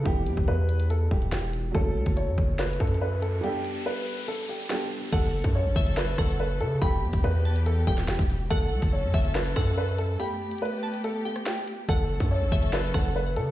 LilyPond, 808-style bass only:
\new Staff \with { instrumentName = "808-style bass" } { \clef bass \time 4/4 \key fis \phrygian \tempo 4 = 142 e,,8 e,16 e,,16 e,4. d,,8 e,,4 | fis,,8 cis,16 fis,,8 fis,16 fis,,4 fis,4. | r1 | fis,,8. fis,8 a,,16 fis,,4 fis,,4 cis8 |
e,,8 e,16 e,,16 e,4. d,,8 e,,16 e,,8. | fis,,8 cis,16 fis,,8 fis,16 fis,,4 fis,4. | r1 | fis,,8. fis,8 a,,16 fis,,4 fis,,4 cis8 | }